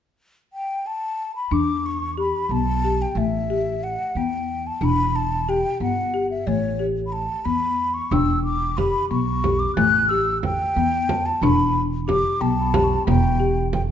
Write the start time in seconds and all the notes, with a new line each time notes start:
0.53 G5
0.87 A5
1.36 B5
1.51 E2 D4 D6
1.86 C#6
2.17 G4 B5
2.49 B1 B3 A5
2.84 G4
3.02 G5
3.15 A1 A3 E5
3.50 G4
3.84 F#5
4.15 E2 B3 G5
4.67 A5
4.81 E1 D4 B5
5.16 A5
5.49 G4 G5
5.80 G1 B3 F#5
6.14 G4
6.31 E5
6.47 A1 A3 C#5
6.79 G4
7.07 B5
7.13 A5
7.45 E2 B3 B5
7.94 C#6
8.11 E1 D4 G5 E6, frame drum
8.44 D6
8.77 G4 B5, frame drum
9.10 B1 B3 C#6
9.44 G4, frame drum
9.59 D6
9.76 A1 A3 F#6, frame drum
10.09 G4 E6
10.43 G5, frame drum
10.76 E2 B3
11.09 A5, frame drum
11.26 A5
11.41 E1 D4 B5, frame drum
12.08 G4 D6, frame drum
12.41 B1 B3 G5 A5
12.61 B5
12.74 G4, frame drum
12.84 C#6
13.07 E1 B3 G5, frame drum
13.40 G4
13.73 G5, frame drum